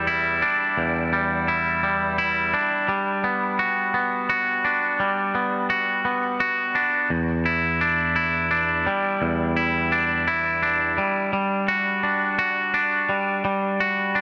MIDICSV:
0, 0, Header, 1, 2, 480
1, 0, Start_track
1, 0, Key_signature, 1, "minor"
1, 0, Tempo, 704225
1, 528, Time_signature, 6, 3, 24, 8
1, 9686, End_track
2, 0, Start_track
2, 0, Title_t, "Clean electric guitar"
2, 0, Program_c, 0, 27
2, 0, Note_on_c, 0, 40, 57
2, 0, Note_on_c, 0, 55, 54
2, 50, Note_on_c, 0, 64, 52
2, 287, Note_on_c, 0, 62, 50
2, 288, Note_off_c, 0, 40, 0
2, 528, Note_on_c, 0, 40, 58
2, 766, Note_off_c, 0, 55, 0
2, 769, Note_on_c, 0, 55, 52
2, 1002, Note_off_c, 0, 64, 0
2, 1010, Note_on_c, 0, 64, 51
2, 1246, Note_off_c, 0, 55, 0
2, 1249, Note_on_c, 0, 55, 50
2, 1480, Note_off_c, 0, 64, 0
2, 1488, Note_on_c, 0, 64, 54
2, 1509, Note_off_c, 0, 62, 0
2, 1727, Note_off_c, 0, 40, 0
2, 1728, Note_on_c, 0, 62, 52
2, 1966, Note_off_c, 0, 55, 0
2, 1966, Note_on_c, 0, 55, 64
2, 1967, Note_off_c, 0, 64, 0
2, 2208, Note_on_c, 0, 59, 50
2, 2448, Note_on_c, 0, 66, 52
2, 2683, Note_off_c, 0, 59, 0
2, 2686, Note_on_c, 0, 59, 53
2, 2920, Note_off_c, 0, 66, 0
2, 2928, Note_on_c, 0, 66, 59
2, 3164, Note_off_c, 0, 62, 0
2, 3167, Note_on_c, 0, 62, 56
2, 3404, Note_off_c, 0, 55, 0
2, 3406, Note_on_c, 0, 55, 60
2, 3636, Note_off_c, 0, 59, 0
2, 3645, Note_on_c, 0, 59, 51
2, 3876, Note_off_c, 0, 66, 0
2, 3884, Note_on_c, 0, 66, 59
2, 4115, Note_off_c, 0, 59, 0
2, 4123, Note_on_c, 0, 59, 63
2, 4355, Note_off_c, 0, 66, 0
2, 4364, Note_on_c, 0, 66, 63
2, 4365, Note_off_c, 0, 62, 0
2, 4601, Note_on_c, 0, 62, 56
2, 4605, Note_off_c, 0, 55, 0
2, 4841, Note_on_c, 0, 40, 66
2, 4842, Note_off_c, 0, 62, 0
2, 4843, Note_off_c, 0, 59, 0
2, 4844, Note_off_c, 0, 66, 0
2, 5081, Note_on_c, 0, 64, 54
2, 5323, Note_on_c, 0, 62, 56
2, 5552, Note_off_c, 0, 64, 0
2, 5560, Note_on_c, 0, 64, 64
2, 5796, Note_off_c, 0, 62, 0
2, 5799, Note_on_c, 0, 62, 54
2, 6042, Note_off_c, 0, 40, 0
2, 6043, Note_on_c, 0, 55, 58
2, 6282, Note_on_c, 0, 40, 62
2, 6511, Note_off_c, 0, 64, 0
2, 6520, Note_on_c, 0, 64, 55
2, 6758, Note_off_c, 0, 62, 0
2, 6761, Note_on_c, 0, 62, 56
2, 6996, Note_off_c, 0, 64, 0
2, 7004, Note_on_c, 0, 64, 64
2, 7239, Note_off_c, 0, 62, 0
2, 7242, Note_on_c, 0, 62, 61
2, 7480, Note_off_c, 0, 55, 0
2, 7483, Note_off_c, 0, 40, 0
2, 7483, Note_on_c, 0, 55, 59
2, 7720, Note_off_c, 0, 55, 0
2, 7723, Note_on_c, 0, 55, 58
2, 7724, Note_off_c, 0, 64, 0
2, 7963, Note_on_c, 0, 66, 59
2, 8199, Note_off_c, 0, 62, 0
2, 8202, Note_on_c, 0, 62, 50
2, 8434, Note_off_c, 0, 66, 0
2, 8443, Note_on_c, 0, 66, 62
2, 8680, Note_off_c, 0, 62, 0
2, 8683, Note_on_c, 0, 62, 61
2, 8921, Note_off_c, 0, 55, 0
2, 8924, Note_on_c, 0, 55, 53
2, 9163, Note_off_c, 0, 55, 0
2, 9166, Note_on_c, 0, 55, 71
2, 9401, Note_off_c, 0, 66, 0
2, 9409, Note_on_c, 0, 66, 58
2, 9643, Note_off_c, 0, 62, 0
2, 9646, Note_on_c, 0, 62, 53
2, 9686, Note_off_c, 0, 55, 0
2, 9686, Note_off_c, 0, 62, 0
2, 9686, Note_off_c, 0, 66, 0
2, 9686, End_track
0, 0, End_of_file